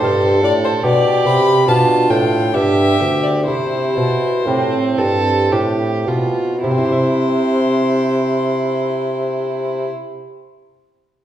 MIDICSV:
0, 0, Header, 1, 5, 480
1, 0, Start_track
1, 0, Key_signature, 0, "major"
1, 0, Tempo, 826446
1, 488, Time_signature, 3, 2, 24, 8
1, 974, Tempo, 865801
1, 1454, Tempo, 927357
1, 1934, Tempo, 995025
1, 2414, Tempo, 1050788
1, 2894, Tempo, 1119403
1, 5352, End_track
2, 0, Start_track
2, 0, Title_t, "Violin"
2, 0, Program_c, 0, 40
2, 0, Note_on_c, 0, 72, 88
2, 240, Note_off_c, 0, 72, 0
2, 257, Note_on_c, 0, 74, 85
2, 303, Note_off_c, 0, 74, 0
2, 375, Note_on_c, 0, 72, 74
2, 422, Note_off_c, 0, 72, 0
2, 495, Note_on_c, 0, 74, 88
2, 734, Note_on_c, 0, 83, 97
2, 742, Note_off_c, 0, 74, 0
2, 977, Note_on_c, 0, 81, 85
2, 985, Note_off_c, 0, 83, 0
2, 1210, Note_on_c, 0, 79, 74
2, 1218, Note_off_c, 0, 81, 0
2, 1455, Note_on_c, 0, 76, 88
2, 1463, Note_off_c, 0, 79, 0
2, 1812, Note_on_c, 0, 74, 67
2, 1820, Note_off_c, 0, 76, 0
2, 1928, Note_off_c, 0, 74, 0
2, 1931, Note_on_c, 0, 72, 76
2, 2875, Note_off_c, 0, 72, 0
2, 3375, Note_on_c, 0, 72, 73
2, 4772, Note_off_c, 0, 72, 0
2, 5352, End_track
3, 0, Start_track
3, 0, Title_t, "Violin"
3, 0, Program_c, 1, 40
3, 13, Note_on_c, 1, 69, 65
3, 483, Note_on_c, 1, 67, 76
3, 492, Note_off_c, 1, 69, 0
3, 972, Note_off_c, 1, 67, 0
3, 976, Note_on_c, 1, 65, 69
3, 1446, Note_off_c, 1, 65, 0
3, 1455, Note_on_c, 1, 67, 64
3, 1925, Note_off_c, 1, 67, 0
3, 1931, Note_on_c, 1, 64, 58
3, 2355, Note_off_c, 1, 64, 0
3, 2413, Note_on_c, 1, 60, 66
3, 2651, Note_on_c, 1, 69, 76
3, 2658, Note_off_c, 1, 60, 0
3, 2894, Note_on_c, 1, 67, 63
3, 2901, Note_off_c, 1, 69, 0
3, 3133, Note_on_c, 1, 65, 59
3, 3140, Note_off_c, 1, 67, 0
3, 3370, Note_off_c, 1, 65, 0
3, 3372, Note_on_c, 1, 64, 58
3, 4770, Note_off_c, 1, 64, 0
3, 5352, End_track
4, 0, Start_track
4, 0, Title_t, "Lute"
4, 0, Program_c, 2, 24
4, 15, Note_on_c, 2, 43, 49
4, 16, Note_on_c, 2, 57, 40
4, 17, Note_on_c, 2, 62, 41
4, 21, Note_on_c, 2, 65, 49
4, 227, Note_off_c, 2, 43, 0
4, 250, Note_on_c, 2, 45, 52
4, 465, Note_off_c, 2, 45, 0
4, 465, Note_off_c, 2, 57, 0
4, 466, Note_off_c, 2, 62, 0
4, 468, Note_off_c, 2, 65, 0
4, 487, Note_on_c, 2, 47, 51
4, 706, Note_off_c, 2, 47, 0
4, 725, Note_on_c, 2, 48, 46
4, 949, Note_off_c, 2, 48, 0
4, 975, Note_on_c, 2, 47, 55
4, 978, Note_on_c, 2, 62, 44
4, 980, Note_on_c, 2, 65, 49
4, 1190, Note_off_c, 2, 47, 0
4, 1210, Note_on_c, 2, 45, 55
4, 1431, Note_off_c, 2, 45, 0
4, 1434, Note_off_c, 2, 62, 0
4, 1434, Note_off_c, 2, 65, 0
4, 1455, Note_on_c, 2, 43, 50
4, 1456, Note_on_c, 2, 59, 36
4, 1458, Note_on_c, 2, 62, 38
4, 1462, Note_on_c, 2, 67, 34
4, 1669, Note_off_c, 2, 43, 0
4, 1690, Note_on_c, 2, 38, 48
4, 1914, Note_off_c, 2, 38, 0
4, 1914, Note_off_c, 2, 59, 0
4, 1915, Note_off_c, 2, 62, 0
4, 1917, Note_off_c, 2, 67, 0
4, 1936, Note_on_c, 2, 48, 46
4, 2153, Note_off_c, 2, 48, 0
4, 2175, Note_on_c, 2, 47, 50
4, 2397, Note_off_c, 2, 47, 0
4, 2417, Note_on_c, 2, 45, 45
4, 2417, Note_on_c, 2, 60, 42
4, 2419, Note_on_c, 2, 67, 40
4, 2420, Note_on_c, 2, 64, 39
4, 2634, Note_off_c, 2, 45, 0
4, 2649, Note_on_c, 2, 43, 47
4, 2875, Note_off_c, 2, 43, 0
4, 2877, Note_off_c, 2, 60, 0
4, 2879, Note_off_c, 2, 64, 0
4, 2879, Note_off_c, 2, 67, 0
4, 2896, Note_on_c, 2, 45, 47
4, 2897, Note_on_c, 2, 60, 37
4, 2898, Note_on_c, 2, 64, 37
4, 2900, Note_on_c, 2, 67, 38
4, 3116, Note_off_c, 2, 45, 0
4, 3134, Note_on_c, 2, 47, 52
4, 3356, Note_off_c, 2, 60, 0
4, 3357, Note_off_c, 2, 47, 0
4, 3357, Note_off_c, 2, 64, 0
4, 3358, Note_off_c, 2, 67, 0
4, 3376, Note_on_c, 2, 48, 48
4, 3406, Note_on_c, 2, 60, 51
4, 3436, Note_on_c, 2, 64, 52
4, 3466, Note_on_c, 2, 67, 54
4, 3495, Note_off_c, 2, 67, 0
4, 3497, Note_on_c, 2, 76, 49
4, 4773, Note_off_c, 2, 48, 0
4, 4804, Note_off_c, 2, 60, 0
4, 4833, Note_off_c, 2, 64, 0
4, 4894, Note_off_c, 2, 76, 0
4, 5352, End_track
5, 0, Start_track
5, 0, Title_t, "Bassoon"
5, 0, Program_c, 3, 70
5, 13, Note_on_c, 3, 43, 70
5, 245, Note_off_c, 3, 43, 0
5, 247, Note_on_c, 3, 45, 62
5, 416, Note_off_c, 3, 45, 0
5, 486, Note_on_c, 3, 47, 67
5, 731, Note_on_c, 3, 48, 61
5, 740, Note_off_c, 3, 47, 0
5, 970, Note_off_c, 3, 48, 0
5, 973, Note_on_c, 3, 47, 66
5, 1206, Note_off_c, 3, 47, 0
5, 1210, Note_on_c, 3, 45, 62
5, 1454, Note_on_c, 3, 43, 58
5, 1461, Note_off_c, 3, 45, 0
5, 1687, Note_off_c, 3, 43, 0
5, 1690, Note_on_c, 3, 38, 58
5, 1933, Note_on_c, 3, 48, 59
5, 1940, Note_off_c, 3, 38, 0
5, 2169, Note_on_c, 3, 47, 55
5, 2176, Note_off_c, 3, 48, 0
5, 2413, Note_on_c, 3, 45, 58
5, 2420, Note_off_c, 3, 47, 0
5, 2647, Note_off_c, 3, 45, 0
5, 2650, Note_on_c, 3, 43, 55
5, 2889, Note_off_c, 3, 43, 0
5, 2895, Note_on_c, 3, 45, 57
5, 3130, Note_on_c, 3, 47, 55
5, 3137, Note_off_c, 3, 45, 0
5, 3369, Note_off_c, 3, 47, 0
5, 3372, Note_on_c, 3, 48, 65
5, 4769, Note_off_c, 3, 48, 0
5, 5352, End_track
0, 0, End_of_file